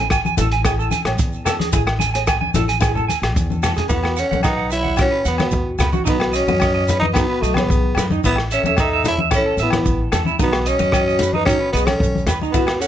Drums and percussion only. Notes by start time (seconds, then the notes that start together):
0.10 kick, cross-stick, closed hi-hat, low agogo, shekere
0.25 high conga, shekere
0.37 closed hi-hat, high conga, low conga, shekere
0.51 closed hi-hat
0.65 kick, cross-stick, closed hi-hat, low agogo, shekere
0.80 shekere
0.91 closed hi-hat, high conga, shekere
1.05 cross-stick, closed hi-hat, low agogo
1.18 kick, closed hi-hat, shekere
1.33 shekere
1.46 cross-stick, closed hi-hat, low conga, low agogo, shekere
1.60 closed hi-hat, high conga, shekere
1.72 kick, closed hi-hat, shekere
1.87 cross-stick, low agogo, shekere
2.00 closed hi-hat, high conga, shekere
2.15 closed hi-hat, shekere
2.27 kick, cross-stick, closed hi-hat, low agogo, shekere
2.41 high conga
2.54 closed hi-hat, high conga, low conga, shekere
2.69 closed hi-hat, shekere
2.81 kick, cross-stick, closed hi-hat, low agogo, shekere
2.96 low conga, shekere
3.09 closed hi-hat, high conga, shekere
3.22 cross-stick, closed hi-hat, low agogo, shekere
3.36 kick, closed hi-hat, high conga, shekere
3.50 high conga, shekere
3.63 cross-stick, closed hi-hat, low conga, low agogo, shekere
3.76 closed hi-hat, low conga, shekere
3.89 kick, shekere
4.04 cross-stick, low agogo, shekere
4.17 closed hi-hat, shekere
4.32 high conga
4.43 kick, cross-stick, low agogo, shekere
4.71 closed hi-hat, shekere
4.85 high conga
4.97 kick, cross-stick, low agogo, shekere
5.25 closed hi-hat, shekere
5.38 cross-stick, high conga, low agogo
5.51 kick, low conga, shekere
5.79 cross-stick, closed hi-hat, low conga, low agogo, shekere
5.93 high conga, shekere
6.06 kick, shekere
6.20 cross-stick, low agogo, shekere
6.34 closed hi-hat, shekere
6.48 high conga
6.60 kick, cross-stick, low agogo, shekere
6.88 closed hi-hat, low conga, shekere
7.02 high conga
7.14 kick, cross-stick, low agogo, shekere
7.43 closed hi-hat, shekere
7.54 cross-stick, high conga, low agogo
7.68 kick, low conga, shekere
7.95 cross-stick, closed hi-hat, low conga, low agogo, shekere
8.10 high conga, shekere
8.24 kick, shekere
8.36 cross-stick, low agogo, shekere
8.51 closed hi-hat, shekere
8.64 high conga
8.77 kick, cross-stick, low agogo, shekere
9.04 closed hi-hat, low conga, shekere
9.18 high conga
9.31 kick, cross-stick, low agogo, shekere
9.58 closed hi-hat, shekere
9.70 cross-stick, high conga, low agogo
9.85 kick, low conga, shekere
10.12 cross-stick, closed hi-hat, low conga, low agogo, shekere
10.25 high conga, shekere
10.39 kick, shekere
10.52 cross-stick, low agogo, shekere
10.66 closed hi-hat, shekere
10.80 high conga, shekere
10.92 kick, cross-stick, low agogo, shekere
11.10 shekere
11.19 closed hi-hat, low conga, shekere
11.33 high conga
11.46 kick, cross-stick, low agogo, shekere
11.73 closed hi-hat, low conga, shekere
11.87 cross-stick, high conga, low agogo
11.91 shekere
12.00 kick, low conga, shekere
12.15 high conga, shekere
12.27 cross-stick, closed hi-hat, low conga, low agogo, shekere
12.41 high conga, shekere
12.54 kick, shekere
12.67 cross-stick, low agogo, shekere
12.81 closed hi-hat, shekere